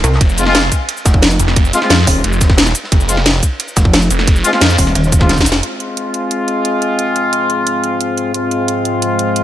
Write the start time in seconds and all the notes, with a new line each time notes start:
0.04 C2, closed hi-hat, ride, shaker
0.12 snare
0.21 F1, kick, closed hi-hat, ride
0.29 shaker
0.38 G#3 C4 F4, closed hi-hat, ride, shaker
0.46 G#3 C4 F4, snare, ride
0.55 snare, closed hi-hat, ride
0.64 snare
0.71 kick, closed hi-hat, ride, shaker
0.89 closed hi-hat, ride
0.97 shaker
1.05 F1, kick, snare, closed hi-hat, ride, shaker
1.14 kick
1.22 snare, closed hi-hat, ride
1.31 shaker
1.39 F1, closed hi-hat, ride, shaker
1.48 snare
1.56 kick, closed hi-hat, ride
1.65 shaker
1.73 G#3 C4 F4, snare, closed hi-hat, ride, shaker
1.82 G#3 C4 F4, snare
1.90 F2, snare, closed hi-hat, ride
1.98 snare
2.07 D#1, kick, open hi-hat, ride, shaker
2.24 F1, closed hi-hat, ride
2.33 shaker
2.41 kick, snare, closed hi-hat, ride, shaker
2.50 kick, snare
2.57 snare, closed hi-hat, ride
2.67 snare, shaker
2.75 closed hi-hat, ride, shaker
2.84 snare
2.92 F1, kick, closed hi-hat, ride
3.00 shaker
3.09 G#3 C4 F4, closed hi-hat, ride, shaker
3.17 snare, ride
3.25 snare, closed hi-hat, ride
3.34 snare
3.43 kick, closed hi-hat, ride, shaker
3.60 closed hi-hat, ride
3.68 shaker
3.76 F1, kick, snare, closed hi-hat, ride, shaker
3.85 kick
3.93 snare, closed hi-hat, ride
4.02 shaker
4.11 F1, closed hi-hat, ride, shaker
4.19 snare
4.28 kick, closed hi-hat, ride
4.36 shaker
4.44 G#3 C4 F4, snare, closed hi-hat, ride, shaker
4.53 G#3 C4 F4, snare
4.61 F2, snare, closed hi-hat, ride
4.70 snare, shaker
4.78 D#1, kick, open hi-hat, ride, shaker
4.87 snare
4.95 D#1, closed hi-hat, ride
5.04 shaker
5.12 kick, closed hi-hat, ride, shaker
5.20 G#3 C4 F4, kick, snare, ride
5.29 snare, closed hi-hat, ride
5.38 kick, snare, shaker
5.41 snare
5.46 F1, closed hi-hat, ride, shaker
5.52 snare
5.63 G#3 C4 F4 C5, closed hi-hat
5.80 closed hi-hat
5.97 closed hi-hat
6.14 closed hi-hat
6.31 closed hi-hat
6.48 closed hi-hat
6.65 closed hi-hat
6.82 closed hi-hat
6.99 closed hi-hat
7.16 closed hi-hat
7.33 closed hi-hat
7.50 closed hi-hat
7.67 closed hi-hat
7.84 closed hi-hat
8.01 closed hi-hat
8.18 closed hi-hat
8.34 G#3 C4 F4, closed hi-hat
8.51 closed hi-hat
8.68 closed hi-hat
8.85 closed hi-hat
9.02 closed hi-hat
9.19 closed hi-hat
9.36 closed hi-hat